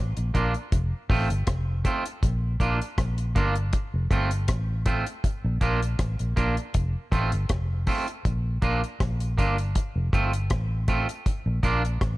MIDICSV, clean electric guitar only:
0, 0, Header, 1, 2, 480
1, 0, Start_track
1, 0, Key_signature, -2, "major"
1, 0, Tempo, 752823
1, 1420, Time_signature, 4, 2, 24, 8
1, 7763, End_track
2, 0, Start_track
2, 0, Title_t, "Clean electric guitar"
2, 0, Program_c, 0, 27
2, 217, Note_on_c, 0, 58, 70
2, 223, Note_on_c, 0, 62, 73
2, 227, Note_on_c, 0, 65, 78
2, 332, Note_off_c, 0, 58, 0
2, 335, Note_off_c, 0, 62, 0
2, 337, Note_off_c, 0, 65, 0
2, 698, Note_on_c, 0, 57, 84
2, 703, Note_on_c, 0, 60, 88
2, 707, Note_on_c, 0, 65, 81
2, 813, Note_off_c, 0, 57, 0
2, 815, Note_off_c, 0, 60, 0
2, 817, Note_off_c, 0, 65, 0
2, 1177, Note_on_c, 0, 57, 68
2, 1183, Note_on_c, 0, 60, 78
2, 1188, Note_on_c, 0, 65, 84
2, 1292, Note_off_c, 0, 57, 0
2, 1295, Note_off_c, 0, 60, 0
2, 1298, Note_off_c, 0, 65, 0
2, 1658, Note_on_c, 0, 58, 72
2, 1664, Note_on_c, 0, 62, 81
2, 1668, Note_on_c, 0, 65, 91
2, 1773, Note_off_c, 0, 58, 0
2, 1776, Note_off_c, 0, 62, 0
2, 1778, Note_off_c, 0, 65, 0
2, 2138, Note_on_c, 0, 58, 76
2, 2144, Note_on_c, 0, 62, 89
2, 2149, Note_on_c, 0, 65, 96
2, 2253, Note_off_c, 0, 58, 0
2, 2256, Note_off_c, 0, 62, 0
2, 2258, Note_off_c, 0, 65, 0
2, 2618, Note_on_c, 0, 57, 75
2, 2624, Note_on_c, 0, 60, 89
2, 2630, Note_on_c, 0, 65, 98
2, 2733, Note_off_c, 0, 57, 0
2, 2736, Note_off_c, 0, 60, 0
2, 2739, Note_off_c, 0, 65, 0
2, 3097, Note_on_c, 0, 57, 76
2, 3102, Note_on_c, 0, 60, 73
2, 3108, Note_on_c, 0, 65, 76
2, 3212, Note_off_c, 0, 57, 0
2, 3215, Note_off_c, 0, 60, 0
2, 3218, Note_off_c, 0, 65, 0
2, 3577, Note_on_c, 0, 58, 92
2, 3582, Note_on_c, 0, 62, 90
2, 3588, Note_on_c, 0, 65, 101
2, 3693, Note_off_c, 0, 58, 0
2, 3695, Note_off_c, 0, 62, 0
2, 3698, Note_off_c, 0, 65, 0
2, 4057, Note_on_c, 0, 58, 73
2, 4062, Note_on_c, 0, 62, 72
2, 4067, Note_on_c, 0, 65, 76
2, 4173, Note_off_c, 0, 58, 0
2, 4176, Note_off_c, 0, 62, 0
2, 4178, Note_off_c, 0, 65, 0
2, 4537, Note_on_c, 0, 57, 83
2, 4542, Note_on_c, 0, 60, 80
2, 4547, Note_on_c, 0, 65, 88
2, 4653, Note_off_c, 0, 57, 0
2, 4655, Note_off_c, 0, 60, 0
2, 4658, Note_off_c, 0, 65, 0
2, 5018, Note_on_c, 0, 57, 86
2, 5024, Note_on_c, 0, 60, 82
2, 5029, Note_on_c, 0, 65, 85
2, 5134, Note_off_c, 0, 57, 0
2, 5137, Note_off_c, 0, 60, 0
2, 5139, Note_off_c, 0, 65, 0
2, 5495, Note_on_c, 0, 58, 85
2, 5502, Note_on_c, 0, 62, 84
2, 5507, Note_on_c, 0, 65, 97
2, 5612, Note_off_c, 0, 58, 0
2, 5615, Note_off_c, 0, 62, 0
2, 5618, Note_off_c, 0, 65, 0
2, 5978, Note_on_c, 0, 58, 77
2, 5983, Note_on_c, 0, 62, 75
2, 5988, Note_on_c, 0, 65, 83
2, 6093, Note_off_c, 0, 58, 0
2, 6096, Note_off_c, 0, 62, 0
2, 6098, Note_off_c, 0, 65, 0
2, 6459, Note_on_c, 0, 57, 70
2, 6465, Note_on_c, 0, 60, 83
2, 6469, Note_on_c, 0, 65, 82
2, 6574, Note_off_c, 0, 57, 0
2, 6577, Note_off_c, 0, 60, 0
2, 6579, Note_off_c, 0, 65, 0
2, 6938, Note_on_c, 0, 57, 80
2, 6942, Note_on_c, 0, 60, 85
2, 6948, Note_on_c, 0, 65, 80
2, 7053, Note_off_c, 0, 57, 0
2, 7055, Note_off_c, 0, 60, 0
2, 7058, Note_off_c, 0, 65, 0
2, 7415, Note_on_c, 0, 58, 83
2, 7422, Note_on_c, 0, 62, 93
2, 7427, Note_on_c, 0, 65, 93
2, 7532, Note_off_c, 0, 58, 0
2, 7535, Note_off_c, 0, 62, 0
2, 7537, Note_off_c, 0, 65, 0
2, 7763, End_track
0, 0, End_of_file